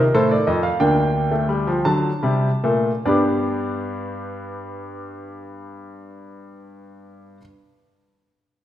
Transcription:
Already playing: D#3
0.00 A#4
0.15 A2 A4 C5
0.31 D5
0.47 F2 D#5
0.63 F5
0.80 D2 A#3 D4 G5
1.31 A3
1.49 G3
1.67 F3
1.85 D3 F#3 A5
2.23 C3 G3
2.64 A#2 A3
3.06 G2 G3 B3 D4 G4 D5

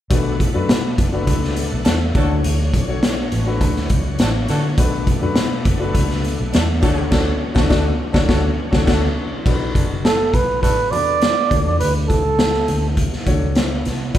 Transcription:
0.10 B1 B2 A3 B3 D4 F#4 A4 B4, kick, closed hi-hat
0.40 kick, closed hi-hat
0.54 F#2 D4 F#4 A4 B4
0.69 B2, snare, closed hi-hat
0.98 F#1, kick, closed hi-hat
1.12 D4 F#4 A4 B4
1.27 C#2, kick, closed hi-hat
1.43 snare
1.56 closed hi-hat
1.72 B1
1.85 E2 A3 D4 F#4 A4, snare, closed hi-hat
2.15 D2 D3 F#3 A3 D4 F#4 A4 C#5, kick, closed hi-hat
2.44 D2, closed hi-hat
2.74 B1, kick, closed hi-hat
2.87 D4 F#4 A4 C#5
3.03 snare, closed hi-hat
3.32 A1, closed hi-hat
3.46 D4 F#4 A4 B4
3.61 D2, kick, closed hi-hat
3.76 snare
3.89 C#2, kick, closed hi-hat
4.19 A1 A3 D4 F#4 A4, snare, closed hi-hat
4.48 D3 A3 D4 F#4 A4, snare, closed hi-hat
4.77 B1 B2 A3 B3 D4 F#4 A4 B4, kick, closed hi-hat
5.07 kick, closed hi-hat
5.21 F#2 D4 F#4 A4 B4
5.36 B2, snare, closed hi-hat
5.65 F#1, kick, closed hi-hat
5.80 D4 F#4 A4 B4
5.95 C#2, kick, closed hi-hat
6.10 snare
6.24 closed hi-hat
6.40 B1
6.53 E2 A3 D4 F#4 A4, snare, closed hi-hat
6.81 D2 D3 F#3 A3 C#4 D4 F#4 A4 C#5, kick, snare, closed hi-hat
7.10 D2 D3 A3 D4 F#4 A4 C#5, kick, snare, crash
7.54 D2 A3 D4 F#4 A4, kick, snare
7.69 D2 A3 D4 F#4 A4, kick, snare
8.13 D2 A3 D4 F#4 A4 C#5, kick, snare
8.27 D2 A3 D4 F#4 A4 C#5, kick, snare
8.71 D2 A3 D4 F#4 A4 C#5, kick, snare
8.86 D2 A3 D4 F#4 A4 C#5, kick, snare, crash
9.45 B1 B2 D4 F#4 A4 B4, kick, crash
9.74 F#1 A3 D4 F#4 A4, kick, closed hi-hat
10.05 A4, snare, closed hi-hat
10.34 B1 B4, kick, closed hi-hat
10.62 A1 A3 D4 F#4 A4 B4, kick, closed hi-hat
10.91 E2 D4 F#4 A4 B4 D5, closed hi-hat
11.21 snare, closed hi-hat
11.49 D2 D3 D4 F#4 A4 C#5, kick, closed hi-hat
11.66 E2
11.80 D2 B4, closed hi-hat
12.09 A4, kick, closed hi-hat
12.25 C#2
12.39 snare, closed hi-hat
12.54 snare
12.68 D2, closed hi-hat
12.97 kick, closed hi-hat
13.13 snare
13.26 D2 D4 F#4 A4 C#5, kick, closed hi-hat
13.42 C#2
13.55 snare, closed hi-hat
13.85 C2, snare, closed hi-hat
14.14 B1 B2 D4 F#4 A4, kick, closed hi-hat

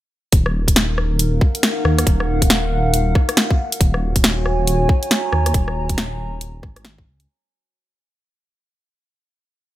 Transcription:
0.32 D#1 D#4, kick, closed hi-hat
0.38 A#4
0.46 cross-stick
0.68 kick, closed hi-hat
0.76 snare, closed hi-hat
0.98 cross-stick
1.13 F5
1.19 closed hi-hat
1.32 F#5
1.41 kick
1.55 closed hi-hat
1.63 snare, closed hi-hat
1.85 D#2, cross-stick
1.99 cross-stick, closed hi-hat
2.07 D#1, kick, closed hi-hat
2.20 cross-stick
2.42 kick, closed hi-hat
2.50 snare, closed hi-hat
2.94 closed hi-hat
3.15 kick, cross-stick
3.29 cross-stick, closed hi-hat
3.37 snare, closed hi-hat
3.51 kick
3.72 closed hi-hat
3.81 D#1 F#4, kick, closed hi-hat
3.94 cross-stick
4.01 C#5
4.07 G#5
4.16 kick, closed hi-hat
4.24 snare, closed hi-hat
4.46 cross-stick
4.67 closed hi-hat
4.85 A#5
4.89 kick
5.03 closed hi-hat
5.11 snare, closed hi-hat
5.33 D#2, cross-stick
5.46 cross-stick, closed hi-hat
5.54 D#1, kick, closed hi-hat
5.68 cross-stick
5.89 kick, closed hi-hat
5.98 snare, closed hi-hat
6.41 closed hi-hat
6.63 G#1, kick, cross-stick
6.76 cross-stick, closed hi-hat
6.85 snare, closed hi-hat
6.98 kick
7.06 C#2
7.20 closed hi-hat

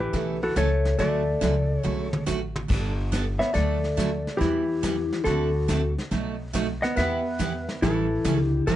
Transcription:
0.00 E3 G4 B4
0.13 B1 C#3 E3 A3 C#4 A4, brush sweep, kick, snare
0.43 E3 F#4 A4
0.56 C#2 C#3 E3 A3 C#4 A4 C#5, kick, snare, hi-hat pedal
0.85 snare
0.99 D2 D3 F#3 A3 C#4 F#4 A4 D5, brush sweep, kick, snare
1.41 C#2 D3 F#3 A3 C#4 F#4, kick, snare, hi-hat pedal
1.81 D3 F#3 G#3 A3 C#4 F#4 C#5, mid tom
1.85 B1
2.13 mid tom
2.26 A1 D3 F#3 A3 C#4 F#4, snare, hi-hat pedal
2.56 mid tom
2.68 G1 G3 B3 D4 A4, brush sweep, kick, snare, crash
3.12 G3 B3 D4 A4, kick, snare, hi-hat pedal
3.39 B3 C#5 E5, snare
3.54 D2 D3 F#3 A3 D4 F#4 A4 D5, brush sweep, kick, snare
3.84 snare
3.97 D3 F#3 A3 D4 F#4, kick, snare, hi-hat pedal
4.27 snare
4.37 E2 E3 G3 B3 E4 F#4 G4, kick
4.41 brush sweep, snare
4.83 E3 G3 B3 F#4, kick, snare, hi-hat pedal
5.13 snare
5.24 D2 D3 A3 C4 F#4 A4, brush sweep, kick, snare
5.68 D3 A3 C4 F#4 A4, kick, snare, hi-hat pedal
5.98 snare
6.11 B1 B2 F#3 A3 D#4 F#4, brush sweep, kick, snare
6.53 B2 F#3 A3 D#4 F#4, kick, snare, hi-hat pedal
6.82 B3 D#5 F#5, snare
6.96 E2 E3 B3 E4 G4 B4 E5, brush sweep, kick, snare
7.39 E3 B3 E4 G4, kick, snare, hi-hat pedal
7.69 snare
7.82 A1 E3 G3 C#4 E4 A4, brush sweep, kick, snare
8.24 C#2 E3 G3 C#4 E4 A4, kick, snare, hi-hat pedal
8.42 D3 G4
8.67 B1 E3 G3 C#4 E4 G4 A4 B4, brush sweep, kick, snare

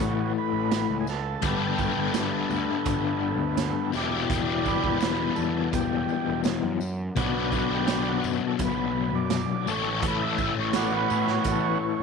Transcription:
Already playing: A2 E3 A3 B3 C#4 F#4 A4
0.00 A1, tambourine
0.38 B4
0.53 A1
0.71 snare, closed hi-hat, tambourine
0.90 C#2
1.00 G#4
1.07 A4, snare, tambourine
1.42 G1 G2 D3 G3 A3 B3 D4 G4, kick, closed hi-hat, tambourine
1.46 B3 G4
1.79 kick, tambourine
1.98 G1
2.14 snare, closed hi-hat, tambourine
2.50 D2, tambourine
2.86 G1, kick, closed hi-hat, tambourine
3.39 D2
3.57 snare, closed hi-hat, tambourine
3.92 E1 E2 B2 E3 G3 E4 G4, snare, tambourine
3.97 D4
4.30 E1, kick, closed hi-hat, tambourine
4.66 B4, kick, tambourine
4.84 E1, kick
5.00 snare, closed hi-hat, tambourine
5.36 E2 A4, tambourine
5.73 E1 G4, kick, closed hi-hat, tambourine
6.08 tambourine
6.28 E1
6.44 snare, closed hi-hat, tambourine
6.63 F#2
6.81 tambourine
7.16 B1 B2 F#3 B3 D4 F#4, kick, closed hi-hat, tambourine
7.52 F#4, kick, tambourine
7.70 B1
7.75 G4
7.88 snare, closed hi-hat, tambourine
8.08 F#4
8.24 F#2, tambourine
8.47 A4
8.59 B1, kick, closed hi-hat, tambourine
8.65 B4
9.15 F#2 D5
9.30 snare, closed hi-hat, tambourine
9.67 A1 A2 E3 A3 C#4 A4 C#5, tambourine
10.03 A1, kick, closed hi-hat, tambourine
10.08 B4
10.22 E5
10.38 kick, tambourine
10.58 A1 C#5
10.73 B3 C#4 F#4, snare, closed hi-hat, tambourine
10.79 D5
10.97 B4
11.10 A2, tambourine
11.27 snare
11.31 C#5
11.44 A1, kick, closed hi-hat, tambourine
11.51 A4
11.64 C#5

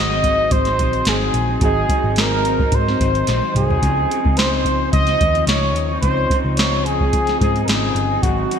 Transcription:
Already playing: G#1 G#2 D#3 F#3 C4 F#4 G#4 D#5
0.00 D#4
0.23 D#3 F#3 C4 D#4, kick, closed hi-hat
0.51 G#1 C5, kick, closed hi-hat
0.65 F#3 C4 D#4, snare, closed hi-hat
0.79 A#1 D#3 F#3 C4 D#4, kick, closed hi-hat
0.93 closed hi-hat
1.05 G#1 G#2 D#3 F#3 C4 D#4 G#4, snare, closed hi-hat
1.34 A#1, closed hi-hat
1.48 F#3 C4 D#4
1.60 G#1 G#2 D#3 F#3 C4 D#4 F#4 G#4, kick, closed hi-hat
1.64 G#4 D#5
1.89 D#3 F#3 C4 D#4, kick, closed hi-hat
2.04 G#1 F#3 C4 D#4
2.16 G#2 D#3 F#3 C4 D#4, snare, closed hi-hat
2.20 A#4
2.45 D#3 F#3 C4 D#4, closed hi-hat
2.59 F#3 C4 D#4, kick
2.72 G#2 C5, kick, closed hi-hat
2.88 F#3 C4 D#4, snare
2.99 G#1 D#3 F#3 C4 D#4, kick, closed hi-hat
3.15 closed hi-hat
3.27 A#1 G#2 D#3 F#3 C4 D#4, snare, closed hi-hat
3.55 C2 G#4, closed hi-hat, mid tom
3.71 F#3 C4 D#4, floor tom
3.82 C#2 C#3 F3 C4 D#4, kick, closed hi-hat
4.10 C#3 F3 C4 D#4, closed hi-hat
4.25 C#2 F3 C4 D#4, kick
4.37 C#3 F3 C4 D#4 C5, snare, closed hi-hat
4.65 C#3 F3 C4 D#4, kick, closed hi-hat
4.92 C#2 D#5, kick, closed hi-hat
5.07 C4 D#4, snare, closed hi-hat
5.11 F3
5.21 D#2 C#3 F3 C4 D#4, kick, closed hi-hat
5.35 F3 C4 D#4, closed hi-hat
5.47 C#2 C#3 F3 D#4 C#5, snare, closed hi-hat
5.74 D#2, closed hi-hat
5.91 F3 C4 D#4
6.01 C#2 C#3 F3 C4 D#4 C5, kick, closed hi-hat
6.30 C#3 F3 C4 D#4, kick, closed hi-hat
6.44 C#2 F3 C4 D#4
6.56 C#3 F3 C4 D#4 C#5, snare, closed hi-hat
6.85 C#3 F3 C4 D#4 G#4, closed hi-hat
7.01 F3 C4 D#4, kick
7.13 kick, closed hi-hat
7.27 F3 C4 D#4, snare, closed hi-hat
7.40 G#2 C#3 F3 C4 D#4 G#4, kick, closed hi-hat
7.55 F3 C4 D#4, closed hi-hat
7.64 G#1 C#3 G#4 A#4, closed hi-hat
7.69 F3 C4 D#4, snare
7.95 G1, closed hi-hat
8.11 F3 C4 D#4
8.23 G#1 G#2 D#3 F#3 C4 D#4 F#4, kick, closed hi-hat
8.51 D#3 F#3 C4 D#4, closed hi-hat

